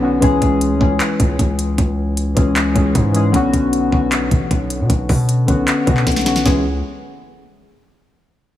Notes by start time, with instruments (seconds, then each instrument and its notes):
Already playing: 808-style bass B1, synth keys B3 C#4 F#4
0.00 synth keys D3 B3 C#4
0.05 synth keys F#4
0.20 808-style bass C#2, synth keys E3 G#3 C#4 G#4, kick, closed hi-hat
0.42 808-style bass C#2, kick, closed hi-hat
0.61 closed hi-hat
0.71 808-style bass D2
0.79 808-style bass C#2, synth keys E3 G#3 C#4 G#4, kick
1.00 clap, closed hi-hat
1.20 808-style bass C#2, kick, closed hi-hat
1.39 808-style bass C#2, kick, closed hi-hat
1.59 closed hi-hat
1.78 808-style bass C#2, kick, closed hi-hat
2.17 closed hi-hat
2.35 808-style bass C#2, synth keys E3 G#3 C#4 G#4, kick, closed hi-hat
2.56 clap, closed hi-hat
2.74 808-style bass C#2, synth keys E3 G#3 C#4 G#4, kick, closed hi-hat
2.95 808-style bass G#2, kick, closed hi-hat
3.13 synth keys E3 G#3 C#4 G#4, closed hi-hat
3.32 808-style bass B1, synth keys D3 B3 C#4 F#4, kick, closed hi-hat
3.54 808-style bass B1, kick, closed hi-hat
3.73 closed hi-hat
3.91 808-style bass B1, synth keys D3 B3 C#4 F#4, kick
4.12 clap, closed hi-hat
4.31 808-style bass A1, kick, closed hi-hat
4.51 808-style bass B1, kick, closed hi-hat
4.70 closed hi-hat
4.80 808-style bass B2
4.90 808-style bass B1, kick, closed hi-hat
5.09 808-style bass B2, kick, open hi-hat
5.29 closed hi-hat
5.46 808-style bass B1, synth keys D3 B3 C#4 F#4, kick, closed hi-hat
5.68 clap, closed hi-hat
5.85 808-style bass B2, synth keys D3 B3 C#4 F#4, kick, closed hi-hat
5.97 clap
6.07 808-style bass B1, kick, snare, closed hi-hat
6.12 closed hi-hat
6.16 snare, closed hi-hat
6.21 synth keys D3, closed hi-hat
6.26 synth keys B3 C#4 F#4, snare, closed hi-hat
6.36 snare
6.46 808-style bass C#2, synth keys E3 G#3 C#4 G#4, kick, snare